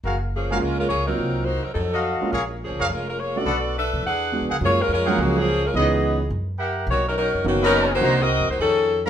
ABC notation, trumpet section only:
X:1
M:4/4
L:1/8
Q:"Swing" 1/4=210
K:F#
V:1 name="Trumpet section"
[FGAe] z2 [FGAe] z4 | z4 z [_G=A_e=f]3 | [GAce] z2 [GAce] z4 | [=AB=df] z6 [G^Aef] |
z3 [GAef]3 z2 | [Bcd]3 z3 [=GA=ef]2 | z4 z [Bcda]3 | [=c_e_g_b] z6 [A^c=fa] |]